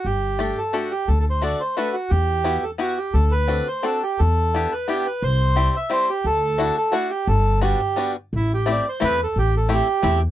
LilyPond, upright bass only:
\new Staff \with { instrumentName = "Upright bass" } { \clef bass \time 3/4 \key g \major \tempo 4 = 175 g,,2 r4 | d,2 r4 | e,2 r4 | d,2 r4 |
e,2 r4 | c,2 r4 | d,2 r4 | g,,2 r4 |
a,,2 e,4 | a,,2 e,4 | }